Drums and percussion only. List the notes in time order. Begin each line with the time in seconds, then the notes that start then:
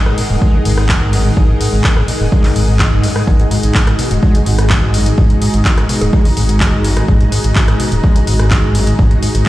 0.06 cross-stick
0.18 open hi-hat
0.42 kick
0.65 open hi-hat
0.78 cross-stick
0.89 kick, clap
1.13 open hi-hat
1.37 kick
1.61 open hi-hat
1.84 kick, clap
1.97 cross-stick
2.08 open hi-hat
2.32 kick
2.44 clap, open hi-hat
2.56 open hi-hat
2.79 kick, clap
3.04 open hi-hat
3.16 cross-stick
3.27 kick
3.40 closed hi-hat
3.51 open hi-hat
3.63 closed hi-hat
3.75 kick, clap
3.87 cross-stick, closed hi-hat
3.99 open hi-hat
4.11 closed hi-hat
4.23 kick
4.35 closed hi-hat
4.46 open hi-hat
4.59 cross-stick, closed hi-hat
4.70 kick, clap
4.94 open hi-hat
5.06 closed hi-hat
5.18 kick
5.30 closed hi-hat
5.42 open hi-hat
5.54 closed hi-hat
5.65 kick, clap
5.78 cross-stick, closed hi-hat
5.89 open hi-hat
6.01 closed hi-hat
6.13 kick
6.25 open hi-hat
6.37 open hi-hat
6.49 closed hi-hat
6.60 kick, clap
6.84 open hi-hat
6.97 cross-stick, closed hi-hat
7.08 kick
7.21 closed hi-hat
7.32 open hi-hat
7.44 closed hi-hat
7.56 kick, clap
7.68 cross-stick, closed hi-hat
7.80 open hi-hat
7.92 closed hi-hat
8.04 kick
8.16 closed hi-hat
8.27 open hi-hat
8.39 cross-stick, closed hi-hat
8.51 kick, clap
8.75 open hi-hat
8.87 closed hi-hat
8.99 kick
9.11 closed hi-hat
9.23 open hi-hat
9.35 closed hi-hat